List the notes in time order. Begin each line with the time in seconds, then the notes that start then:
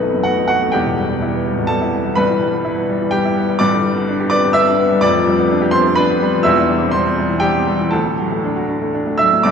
Already playing: B1 F#2 A3 B3 D#4 B4 B5
0.02 A3
0.14 F#2
0.23 A3 F#4 F#5
0.38 D#4
0.48 B3 F#4 F#5
0.62 A3
0.72 E1 E2 G4 G5
0.86 B2
0.98 G3
1.10 B3
1.22 E4
1.34 B3
1.46 G3
1.58 B2
1.67 G3 A4 A5
1.82 E4
1.93 B3
2.05 G3
2.15 G1 G2 B4 B5
2.30 E3
2.41 G3
2.53 B3
2.65 E4
2.77 B3
2.89 G3
3.01 E3
3.11 G3 G4 G5
3.25 E4
3.37 B3
3.49 G3
3.59 G1 G2 D5 D6
3.73 D3
3.85 G3
3.97 B3
4.09 D4
4.20 G4
4.30 B4 D5 D6
4.44 G4
4.53 B4 E5 E6
4.67 D4
4.79 B3
4.91 G3
5.01 F1 F2 D5 D6
5.15 F3
5.27 G3
5.39 B3
5.50 D4
5.62 G4
5.71 D4 C5 C6
5.86 B3
5.95 D4 B4 B5
6.10 B3
6.22 G3
6.34 F3
6.43 E1 E2 E5 E6
6.58 E3
6.69 G3
6.82 C4
6.91 G3 C5 C6
7.06 C4
7.18 G3
7.30 E3
7.40 G3 G4 G5
7.54 C4
7.67 G3
7.80 E3
7.91 D2 A4 A5
8.06 A2
8.18 F#3
8.31 A3
8.44 D4
8.56 F#4
8.69 D4
8.82 A3
8.94 D4
9.07 A3
9.18 F#3 E5 E6
9.33 A2
9.43 G1 G2 D5 D6